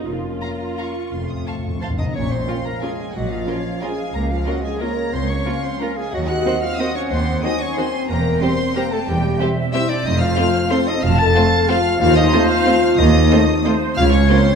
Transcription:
0.06 F1 F2 A#3 C#4 F4
0.42 F5 A#5
0.77 F5 A#5 C#6
1.11 F1 F2 A3 C4 C6
1.19 F2
1.26 F2 D#6
1.34 F2
1.42 F2 A5
1.47 F2 F5 C#6
1.59 F2
1.67 F2
1.74 F2
1.81 F2 C4 C5 F5 A5 C6
1.90 F2
1.98 F2 D#4 D#5 A#5 D#6
2.05 F2
2.14 A#1 A#2 C#4 C#5 C#6
2.30 C4 C5 C6
2.48 F3 C#4 F4 A#4 F5
2.65 A#3 A#4 A#5
2.82 F3 G#3 C#4 F4 G#4 A#4 G#5
3.14 A#1 A#2 F#3 F#4 D#5 F#5
3.30 F3 F4 F5
3.47 F3 C#4 F4 A#4 C#5
3.82 F3 G#3 C#4 F4 G#4 A#4 F5 G#5
4.14 C#2 A#3 A#4 A#5
4.30 F3 F4 F5
4.47 F3 F#3 A#3 C#4 F4 F#4 A#4 D#5 F#5
4.64 G#3 G#4 G#5
4.80 F3 A#3 C#4 F4 A#4 C#5 A#5
5.13 C#2 C4 C5 C6
5.29 C#4 C#5 C#6
5.46 F3 A#3 C#4 F4 A#4 F5
5.63 C4 C5 C6
5.80 F3 A#3 C#4 F4 A#4 F5 A#5
5.97 G#3 G#4 G#5
6.12 D#2 F#3 F#4 D#5 F#5
6.27 F#4 F#5 F#6
6.45 D#3 F#3 C4 F#4 C5
6.62 F4 F5 F6
6.78 D#3 F#3 C4 D#4 F#4 C5 D#5 F#5 D#6
6.95 C#4 C#5 C#6
7.10 D#2 C4 C5 C6
7.43 D#3 F#3 C4 D#4 F#4 C5 D#5 G#5 D#6
7.60 C#4 C#5 C#6
7.76 D#3 F#3 C4 F#4 C5 C6
8.08 E1 E2 A#3 A#4 G5 A#5
8.41 G3 C4 G4 C5 C6
8.75 G3 A#3 C4 G4 A#4 C5 G5 A#5
8.92 A3 A4 A5
9.07 E1 E2 G3 G4 G5
9.39 G3 C4 G4 C5 E5
9.73 G3 C4 E4 G4 C5 E5 E6
9.88 D4 D5 D6
10.05 F1 F2 D#4 D#5 D#6
10.20 F4 F5 F6
10.37 F3 A3 C4 F4 C5
10.69 F3 A3 C4 F4 A4 C5 C6
10.87 D#4 D#5 D#6
11.02 F1 F2 F4 F5 A5 F6
11.17 A4 A5 A6
11.34 F3 A3 C4 F4 C5 F5
11.67 F3 A3 C4 F4 C5 F5 F6
12.00 D#2 F4 C5 F5 F6
12.16 D#4 D#5 D#6
12.31 F3 A3 C4 F4 C5
12.49 F4 F5 F6
12.66 F3 A3 C4 F4 C5
12.97 D#2 D#4 D#5 D#6
13.30 F3 A3 C4 F4 C5 D#5
13.65 F3 A3 C4 F4 C5
13.96 C#2 F4 C#5 F5 F6
14.12 C#4 C#5 C#6
14.29 F3 A#3 C4 C#4 F4 A#4 C5 C6

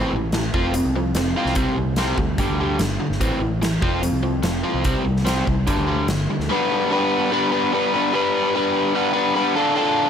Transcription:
Already playing: A2 E3 C4
0.13 A1 A2 E3
0.32 A2 E3, snare, closed hi-hat
0.54 F1 F3 C4 F4, kick
0.74 F3 C4, closed hi-hat
0.85 C2
0.96 F3 C4
1.15 F1 F3 C4, snare, closed hi-hat
1.36 F3 C4 F4
1.45 C2, snare
1.55 C2 C3 G3 C4, kick, closed hi-hat
1.76 C2 C3 G3
1.96 C3 G3 C4, snare, closed hi-hat
2.18 D2 C3 G3, kick
2.38 G1 G2 D3 G3, kick, closed hi-hat
2.49 D2
2.59 G2 D3 G3
2.79 G1 G2 D3, snare, closed hi-hat
3.00 G2 D3
3.10 G1, snare
3.20 A1 A2 E3 C4, kick, closed hi-hat
3.40 A1 A2 E3
3.62 A2 E3, snare, closed hi-hat
3.82 F1 F3 C4 F4, kick
4.01 F3 C4, closed hi-hat
4.12 C2
4.23 F3 C4
4.43 F1 F3 C4, snare, closed hi-hat
4.63 F3 C4 F4
4.74 C2
4.84 C2 C3 G3 C4, kick, closed hi-hat
5.04 C2 C3 G3
5.17 snare
5.25 C3 G3 C4, snare, closed hi-hat
5.46 C2 C3 G3, kick
5.67 G1 G2 D3 G3, kick, closed hi-hat
5.77 D2
5.87 G2 D3 G3
6.07 G1 G2 D3, snare, closed hi-hat
6.30 G2 D3
6.39 D2, snare
6.50 G3 B3 D4 B4
6.90 G3 B3 D4 B4
7.31 G3 B3 D4 B4
7.52 B3 D4 B4
7.72 G3 B3 D4 B4
7.94 B3 D4 B4
8.13 G3 B3 D4 B4
8.55 G3 B3 D4 B4
8.94 G3 B3 D4 B4
9.13 B3 D4 B4
9.34 G3 B3 D4 B4
9.56 D3 D4 F4 A4
9.75 D3 D4 F4 A4

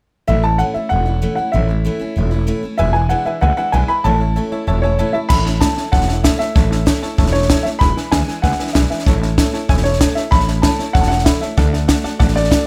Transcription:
0.27 A1 A2 E3 A3 C#4 E4 E5
0.43 A3 C#4 E4 A5
0.58 A2 E3 A3 C#4 E4 F#5
0.74 A3 C#4 E4 E5, muted upright bass stroke
0.89 E1 E3 A3 C#4 E4 F#5
1.06 A3 C#4 E4
1.22 A2 E3 A3 C#4 E4
1.35 A3 C#4 E4 F#5, muted upright bass stroke
1.52 A1 A2 E3 A3 C#4 E4 E5
1.68 A3 C#4 E4
1.85 A2 E3 A3 C#4 E4
1.99 A3 C#4 E4, muted upright bass stroke
2.16 E1 E3 A3 C#4 E4
2.31 A3 C#4 E4
2.47 A2 E3 A3 C#4 E4
2.63 A3 C#4 E4, muted upright bass stroke
2.78 E1 E2 B2 E3 G#3 D4 E4 B4 E5 G#5
2.93 E3 G#3 D4 E4 B4 E5 G#5
3.09 E2 B2 E3 G#3 D4 E4 B4 E5 F#5 G#5
3.25 E3 G#3 D4 E4 B4 E5 G#5, muted upright bass stroke
3.41 C#2 E3 G#3 D4 E4 B4 E5 F#5 G#5
3.57 E3 G#3 D4 E4 B4 E5 F#5 G#5, muted upright bass stroke
3.72 B1 E2 B2 E3 G#3 D4 E4 B4 E5 G#5
3.88 E3 G#3 D4 E4 B4 E5 G#5 B5, muted upright bass stroke
4.04 A1 A2 E3 A3 C#4 E4 C#5 E5 A5
4.20 A3 C#4 E4 C#5 E5 A5
4.36 A2 E3 A3 C#4 E4 C#5 E5 A5
4.51 A3 C#4 E4 C#5 E5 A5, muted upright bass stroke
4.67 E1 E3 A3 C#4 E4 C#5 E5 A5
4.82 A3 C#4 E4 C#5 E5 G#5 A5
4.98 A2 E3 A3 C#4 E4 C#5 E5 A5
5.13 A3 C#4 E4 C#5 E5 A5 B5, muted upright bass stroke
5.29 A1 A2 E3 A3 C#4 E4 C#5 E5 A5 B5, kick, snare, crash
5.45 A3 C#4 E4 C#5 E5 A5, snare
5.60 A2 E3 A3 C#4 E4 C#5 E5 A5, kick, snare, hi-hat pedal
5.76 A3 C#4 E4 C#5 E5 A5, muted upright bass stroke, snare
5.92 E1 E3 A3 C#4 E4 C#5 E5 F#5 A5, kick, snare
6.01 snare
6.07 A3 C#4 E4 C#5 E5 A5, snare
6.24 A2 E3 A3 C#4 E4 C#5 E5 A5, kick, snare, hi-hat pedal
6.39 A3 C#4 E4 C#5 E5 A5, muted upright bass stroke, snare
6.55 A1 A2 E3 A3 C#4 E4 C#5 E5 A5, kick, snare
6.70 A3 C#4 E4 C#5 E5 A5, snare
6.86 A2 E3 A3 C#4 E4 C#5 E5 A5, kick, snare, hi-hat pedal
7.02 A3 C#4 E4 C#5 E5 A5, muted upright bass stroke, snare
7.17 E1 E3 A3 C#4 E4 C#5 E5 A5, kick, snare
7.26 snare
7.32 A3 C#4 E4 C#5 E5 A5, snare
7.42 snare
7.49 A2 E3 A3 C#4 E4 C#5 E5 A5, kick, snare, hi-hat pedal
7.63 A3 C#4 E4 C#5 E5 A5, muted upright bass stroke, snare
7.79 E1 E2 B2 E3 G#3 D4 E4 B4 E5 G#5 B5, kick, snare
7.96 E3 G#3 D4 E4 B4 E5 G#5, snare
8.12 D2 E2 B2 E3 G#3 D4 E4 B4 E5 G#5, kick, snare, hi-hat pedal
8.27 E3 G#3 D4 E4 B4 E5 G#5, muted upright bass stroke, snare
8.42 C#2 E3 G#3 D4 E4 B4 E5 F#5 G#5, kick, snare
8.52 snare
8.59 E3 G#3 D4 E4 B4 E5 G#5, muted upright bass stroke, snare
8.67 snare
8.73 B1 E2 B2 E3 G#3 D4 E4 B4 E5 G#5, kick, snare, hi-hat pedal
8.90 E3 G#3 D4 E4 B4 E5 G#5, snare
8.99 snare
9.06 A1 A2 E3 A3 C#4 E4 C#5 E5 A5, kick, snare
9.22 A3 C#4 E4 C#5 E5 A5, snare
9.38 A2 E3 A3 C#4 E4 C#5 E5 A5, kick, snare, hi-hat pedal
9.53 A3 C#4 E4 C#5 E5 A5, muted upright bass stroke, snare
9.69 E1 E3 A3 C#4 E4 C#5 E5 G#5, kick, snare
9.77 snare
9.84 A3 C#4 E4 C#5 E5 A5, snare
9.93 snare
10.00 A2 E3 A3 C#4 E4 C#5 E5 A5, kick, snare, hi-hat pedal
10.15 A3 C#4 E4 C#5 E5 A5, muted upright bass stroke, snare
10.31 A1 A2 E3 A3 C#4 E4 C#5 E5 A5 B5, kick, snare
10.40 snare
10.47 A3 C#4 E4 C#5 E5 A5, snare
10.62 A2 E3 A3 C#4 E4 C#5 E5 A5 B5, kick, snare, hi-hat pedal
10.79 A3 C#4 E4 C#5 E5 A5, muted upright bass stroke, snare
10.93 E1 E3 A3 C#4 E4 C#5 E5 F#5 A5, kick, snare
11.01 A5, snare
11.08 C#4 E4 C#5 E5 F#5 A5, snare
11.12 A3
11.18 snare
11.24 A2 E3 A3 C#4 E4 C#5 E5 B5, kick, snare, hi-hat pedal
11.41 A3 C#4 E4 C#5 E5 A5, muted upright bass stroke, snare
11.57 D2 D3 A3 D4 F#4 D5 F#5 A5, kick, snare
11.72 A3 D4 F#4 D5 F#5 A5, snare
11.88 D3 A3 D4 F#4 D5 F#5 A5, kick, snare, hi-hat pedal
12.04 A3 D4 F#4 D5 F#5 A5, muted upright bass stroke, snare
12.19 A1 D3 A3 D4 F#4 D5 F#5 A5, kick, snare
12.28 snare
12.35 A3 D4 F#4 D5 F#5 A5, snare
12.44 snare
12.51 D3 A3 D4 F#4 D5 F#5 A5, kick, snare, hi-hat pedal

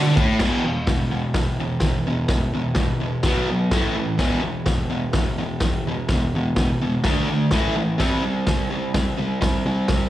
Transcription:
Already playing: D3
0.05 tambourine
0.17 A2, kick, tambourine
0.29 tambourine
0.39 E2 B2 E3, kick, snare, crash
0.65 E2 B2
0.87 E2 B2, kick, snare, open hi-hat
1.11 E2 B2
1.34 E2 B2, kick, snare, open hi-hat
1.60 E2 B2
1.80 E2, kick, snare, open hi-hat
1.84 B2
2.07 E2 B2
2.28 E2 B2, kick, snare, open hi-hat
2.54 E2 B2
2.75 E2 B2, kick, snare, open hi-hat
3.00 E2 B2
3.23 B2 F#3 B3, kick, snare, open hi-hat
3.50 B2 F#3
3.71 A2 E3 A3, kick, snare, open hi-hat
3.96 A2 E3
4.19 E2 B2 E3, kick, snare, open hi-hat
4.41 E2 B2
4.66 E2 B2, kick, snare, open hi-hat
4.90 E2 B2
5.13 E2 B2, kick, snare, open hi-hat
5.39 E2 B2
5.60 E2, kick, snare, open hi-hat
5.65 B2
5.87 E2 B2
6.09 E2, kick, snare, open hi-hat
6.13 B2
6.35 E2 B2
6.56 E2 B2, kick, snare, open hi-hat
6.82 E2 B2
7.04 D3 A3 D4, kick, snare, open hi-hat
7.29 D3 A3
7.51 A2 E3 A3, kick, snare, open hi-hat
7.76 A2 E3
7.98 C3 G3 C4, kick, snare, open hi-hat
8.23 C3 G3
8.47 C3 G3, kick, snare, open hi-hat
8.70 C3 G3
8.94 C3 G3, kick, snare, open hi-hat
9.18 C3 G3
9.41 C3 G3, kick, snare, open hi-hat
9.66 C3 G3
9.88 C3 G3, kick, snare, open hi-hat

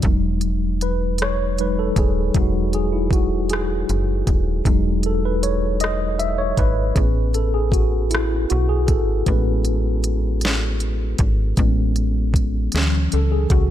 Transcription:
0.02 E1 F#3 G#3 D#4, kick, closed hi-hat
0.41 closed hi-hat
0.81 B4, closed hi-hat
1.18 C#5, cross-stick, closed hi-hat
1.58 F#3 G#3 D#4 B4, closed hi-hat
1.79 A4
1.96 D#1 G#4, kick, closed hi-hat
2.34 E1 F#3 G#3 D#4 F#4, kick, closed hi-hat
2.73 G#4, closed hi-hat
2.93 E4
3.11 F#4, kick, closed hi-hat
3.50 G#4, cross-stick, closed hi-hat
3.89 F#1, closed hi-hat
4.27 D#1, kick, closed hi-hat
4.65 E1 F#3 G#3 D#4, kick, closed hi-hat
5.03 A4, closed hi-hat
5.25 B4
5.43 C#5, closed hi-hat
5.80 D#5, cross-stick, closed hi-hat
6.19 E5, closed hi-hat
6.38 C#5
6.57 G#1 B4, kick, closed hi-hat
6.95 A1 B3 C#4 G#4, kick, closed hi-hat
7.34 A4, closed hi-hat
7.54 G#4
7.72 F#4, kick, closed hi-hat
8.10 E4, closed hi-hat
8.15 cross-stick
8.50 B1 F#4, closed hi-hat
8.69 G#4
8.87 G#1 A4, kick, closed hi-hat
9.26 A1 G#3 B3 C#4 B4, kick, closed hi-hat
9.65 closed hi-hat
10.04 closed hi-hat
10.41 snare, closed hi-hat
10.80 closed hi-hat
11.18 G#1, kick, closed hi-hat
11.57 A1 G#3 B3 C#4, kick, closed hi-hat
11.96 closed hi-hat
12.34 kick, closed hi-hat
12.72 D2 E3 F#3 C#4, snare, closed hi-hat
13.12 C#2 A4, closed hi-hat
13.32 G#4
13.50 C#2 F#4, kick, closed hi-hat

